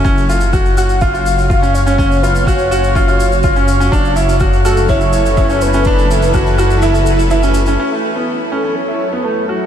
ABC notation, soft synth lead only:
X:1
M:4/4
L:1/8
Q:1/4=124
K:F#m
V:1 name="Soft synth lead"
z3 f ^e3 c- | c B c4- c z | z3 A c3 B- | B3 z4 z |
z3 A c2 B A |]